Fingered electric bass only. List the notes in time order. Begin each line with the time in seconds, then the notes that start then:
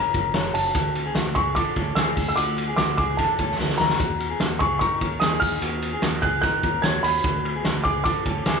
0.14 F#1
0.34 F#1
0.55 F#1
0.75 D2
1.15 D2
1.36 C#2
1.76 D2
1.96 D2
2.17 D2
2.37 D2
2.78 D2
2.98 C#2
3.39 D2
3.59 D2
3.79 D2
4.00 D#2
4.40 D#2
4.61 C#2
5.01 D#2
5.21 D#2
5.42 D#2
5.62 D#2
6.02 D#2
6.23 C#2
6.63 D#2
6.83 D#2
7.04 D#2
7.24 D2
7.65 D2
7.85 C#2
8.26 D2
8.46 D2